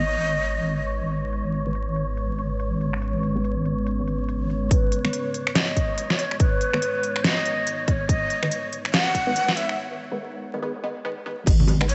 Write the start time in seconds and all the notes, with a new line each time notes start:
Already playing: G#1 G#3 D#4 B4 C#5 D#5
0.06 closed hi-hat
0.27 closed hi-hat
0.48 closed hi-hat
0.69 closed hi-hat
0.91 closed hi-hat
1.12 closed hi-hat
1.33 C#4, closed hi-hat
1.54 closed hi-hat
1.67 D#3 G#3 B3
1.75 closed hi-hat
1.96 closed hi-hat
2.17 closed hi-hat
2.39 closed hi-hat
2.60 closed hi-hat
2.81 closed hi-hat
2.93 finger snap
3.02 closed hi-hat
3.23 closed hi-hat
3.35 D#3 G#3 B3
3.44 closed hi-hat
3.65 closed hi-hat
3.87 closed hi-hat
4.08 closed hi-hat
4.29 closed hi-hat
4.50 closed hi-hat
4.71 G#3 D#4 B4 C#5, kick, closed hi-hat
4.92 closed hi-hat
5.04 D#3 G#3 B3, finger snap
5.13 closed hi-hat
5.34 closed hi-hat
5.47 finger snap
5.55 D#5, snare, closed hi-hat
5.77 kick, closed hi-hat
5.98 closed hi-hat
6.10 finger snap, snare
6.19 C#5, closed hi-hat
6.31 finger snap
6.40 B4, kick, closed hi-hat
6.61 closed hi-hat
6.73 D#3 G#3 B3, finger snap
6.82 closed hi-hat
7.03 closed hi-hat
7.16 finger snap
7.24 D#5, snare, closed hi-hat
7.46 closed hi-hat
7.67 closed hi-hat
7.87 C#5 D#5, kick, closed hi-hat
8.08 D#5, kick, closed hi-hat
8.30 closed hi-hat
8.43 D#3 G#3 B3, finger snap
8.51 closed hi-hat
8.72 closed hi-hat
8.85 finger snap
8.93 F#5, snare, closed hi-hat
9.15 kick, closed hi-hat
9.27 D#3 G#3 B3
9.36 closed hi-hat
9.48 finger snap, snare
9.56 E5, closed hi-hat
9.69 finger snap
10.11 D#3 G#3 B3
10.54 D#3 G#3 B3
10.62 D#3 G#3 B3
10.83 D#3 G#3 B3
11.05 D#3 G#3 B3
11.26 D#3 G#3 B3
11.46 G#1 G#3 B3 B4, kick, closed hi-hat, crash, high bongo
11.60 low conga
11.67 closed hi-hat, high bongo, high conga
11.81 D#3 G#3 B3, finger snap
11.89 C#5, closed hi-hat